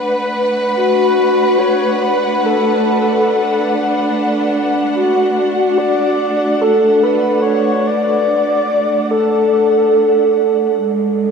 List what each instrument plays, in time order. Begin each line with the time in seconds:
Already playing: string section A3 D4 B4 F#5
0.76 soft synth lead F#4
1.59 soft synth lead C#5
2.03 soft synth lead B4
2.46 soft synth lead A4
4.95 soft synth lead F#4
5.78 soft synth lead D5
6.61 soft synth lead A4
7.03 soft synth lead B4
7.42 soft synth lead C#5
7.87 soft synth lead D5
9.11 soft synth lead A4
10.78 string section G#3